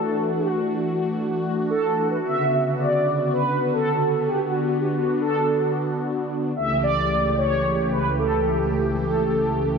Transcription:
0.00 2.19 E3 medium
0.00 2.19 A3 medium
0.00 2.19 D4 medium
0.00 6.52 F#4 medium
0.00 0.31 A4 loud
0.35 1.12 F#4 medium
1.70 2.07 A4 loud
2.10 2.16 B4 loud
2.24 4.38 C#3 medium
2.24 6.52 D3 medium
2.24 6.52 B3 medium
2.24 2.74 E5 loud
2.78 3.33 D5 loud
3.32 3.74 B4 loud
3.73 4.28 A4 loud
4.27 4.39 G4 medium
4.39 6.54 D4 medium
4.39 4.78 F#4 medium
4.80 4.86 G4 medium
4.94 5.19 F#4 medium
5.21 5.71 A4 medium
6.56 9.78 C#2 medium
6.56 9.78 C#3 medium
6.56 9.78 E3 medium
6.56 9.78 A3 medium
6.56 9.78 G4 medium
6.56 6.84 E5 loud
6.83 7.33 D5 loud
7.37 7.87 C#5 loud
7.91 8.16 B4 loud
8.18 8.74 A4 loud
8.72 8.85 G4 medium
8.99 9.78 A4 medium

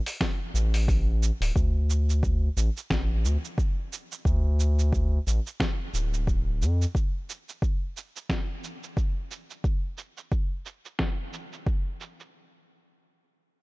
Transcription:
0.06 open hi-hat medium
0.06 cabasa soft
0.21 kick loud
0.21 snare medium
0.21 open hi-hat soft
0.21 cabasa soft
0.54 1.31 A1 medium
0.54 cabasa medium
0.74 open hi-hat medium
0.74 cabasa soft
0.88 kick loud
0.88 open hi-hat soft
0.88 cabasa soft
1.23 cabasa medium
1.41 1.51 D1 loud
1.41 open hi-hat medium
1.41 cabasa soft
1.56 2.49 D2 medium
1.56 kick loud
1.56 cabasa soft
1.90 cabasa medium
2.10 cabasa soft
2.23 kick loud
2.23 cabasa soft
2.57 2.70 A1 medium
2.57 cabasa medium
2.77 cabasa soft
2.90 3.26 A1 loud
2.90 kick loud
2.90 snare medium
2.90 cabasa soft
3.24 3.37 D2 medium
3.24 cabasa medium
3.45 cabasa soft
3.58 kick loud
3.58 cabasa soft
3.93 cabasa medium
4.12 cabasa soft
4.25 5.19 D2 loud
4.25 kick loud
4.25 cabasa soft
4.60 cabasa medium
4.79 cabasa soft
4.93 kick loud
4.93 cabasa soft
5.27 5.40 A1 medium
5.27 cabasa medium
5.47 cabasa soft
5.60 kick loud
5.60 snare medium
5.60 cabasa soft
5.94 6.63 D1 medium
5.94 cabasa medium
6.14 cabasa soft
6.27 kick loud
6.27 cabasa soft
6.62 6.86 F2 loud
6.62 cabasa medium
6.82 cabasa soft
6.95 kick loud
6.95 cabasa soft
7.30 cabasa medium
7.49 cabasa soft
7.62 kick loud
7.62 cabasa soft
7.97 cabasa medium
8.16 cabasa soft
8.30 kick loud
8.30 snare medium
8.30 cabasa soft
8.64 cabasa medium
8.83 cabasa soft
8.97 kick loud
8.97 cabasa soft
9.31 cabasa medium
9.50 cabasa soft
9.64 kick loud
9.64 cabasa soft
9.98 cabasa medium
10.17 cabasa soft
10.32 kick loud
10.32 cabasa soft
10.66 cabasa medium
10.85 cabasa soft
10.99 kick loud
10.99 snare medium
10.99 cabasa soft
11.33 cabasa medium
11.53 cabasa soft
11.67 kick loud
11.67 cabasa soft
12.01 cabasa medium
12.20 cabasa soft

